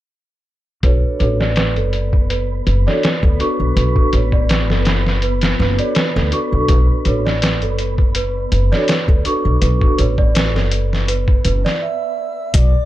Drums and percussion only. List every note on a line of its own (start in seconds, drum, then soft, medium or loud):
0.83 kick loud
0.83 closed hi-hat medium
1.20 closed hi-hat medium
1.41 snare soft
1.56 snare loud
1.56 closed hi-hat medium
1.76 closed hi-hat soft
1.93 closed hi-hat medium
2.13 kick medium
2.30 closed hi-hat medium
2.67 closed hi-hat medium
2.88 snare soft
3.03 snare loud
3.03 closed hi-hat medium
3.23 kick medium
3.40 closed hi-hat medium
3.77 closed hi-hat medium
3.96 kick medium
4.13 closed hi-hat medium
4.32 kick medium
4.49 snare loud
4.49 closed hi-hat medium
4.70 snare soft
4.85 snare medium
4.85 closed hi-hat medium
5.07 snare soft
5.22 closed hi-hat medium
5.41 snare medium
5.41 closed hi-hat medium
5.60 snare soft
5.79 closed hi-hat medium
5.95 snare loud
5.95 closed hi-hat medium
6.17 snare soft
6.32 closed hi-hat medium
6.68 kick loud
6.68 closed hi-hat medium
7.05 closed hi-hat medium
7.27 snare soft
7.42 snare loud
7.42 closed hi-hat medium
7.62 closed hi-hat soft
7.79 closed hi-hat medium
7.98 kick medium
8.15 closed hi-hat medium
8.52 closed hi-hat medium
8.72 snare soft
8.88 snare medium
8.88 closed hi-hat medium
9.08 kick medium
9.25 closed hi-hat medium
9.62 closed hi-hat medium
9.81 kick medium
9.98 closed hi-hat medium
10.18 kick medium
10.35 snare loud
10.35 closed hi-hat medium
10.56 snare soft
10.71 closed hi-hat medium
10.93 snare soft
11.08 closed hi-hat medium
11.28 kick medium
11.45 closed hi-hat medium
11.66 snare medium
12.54 kick loud
12.54 closed hi-hat medium